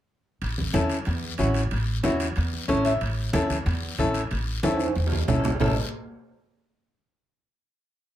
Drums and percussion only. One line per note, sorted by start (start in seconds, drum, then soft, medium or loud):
0.42 high conga soft
0.42 high timbale medium
0.42 long guiro medium
0.58 high conga medium
0.74 high conga medium
0.74 high timbale medium
0.74 short guiro medium
0.90 high timbale medium
0.90 short guiro medium
1.05 high timbale medium
1.05 long guiro medium
1.23 high conga soft
1.38 high conga medium
1.38 high timbale medium
1.38 short guiro medium
1.54 high timbale medium
1.54 short guiro medium
1.71 high conga soft
1.71 high timbale medium
1.71 long guiro medium
2.04 high conga medium
2.04 high timbale medium
2.04 short guiro medium
2.20 high timbale medium
2.20 short guiro medium
2.36 high timbale medium
2.36 long guiro medium
2.53 high conga soft
2.68 high conga medium
2.68 high timbale medium
2.68 short guiro medium
2.85 high timbale medium
2.85 short guiro medium
3.01 high conga soft
3.01 high timbale medium
3.01 long guiro medium
3.33 high conga medium
3.33 high timbale medium
3.33 short guiro medium
3.50 high conga medium
3.50 high timbale medium
3.50 short guiro medium
3.66 high timbale medium
3.66 long guiro medium
3.83 high conga soft
3.98 high conga medium
3.98 high timbale medium
3.98 short guiro medium
4.14 high timbale medium
4.14 short guiro medium
4.31 high conga soft
4.31 high timbale medium
4.31 long guiro medium
4.63 high conga medium
4.63 high timbale medium
4.63 short guiro medium
4.74 high timbale medium
4.80 short guiro medium
4.85 high timbale medium
4.95 long guiro medium
5.07 low timbale medium
5.12 high conga medium
5.28 low conga medium
5.28 low timbale medium
5.28 short guiro medium
5.39 low timbale medium
5.44 low conga medium
5.44 short guiro medium
5.50 low timbale medium
5.60 low conga medium
5.60 low timbale loud
5.60 long guiro medium